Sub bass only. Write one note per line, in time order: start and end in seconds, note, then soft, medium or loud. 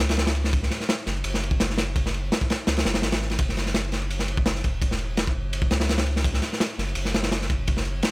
0.00 0.70 C#2 loud
1.07 1.23 F#1 loud
1.25 2.30 F#1 medium
2.67 2.84 C#2 medium
2.85 3.05 F#1 medium
3.03 3.37 G#1 medium
3.39 4.63 F#1 loud
4.64 5.34 E1 medium
5.35 5.70 F#1 loud
5.71 6.41 C#2 loud
6.78 6.94 F#1 loud
6.96 8.02 F#1 medium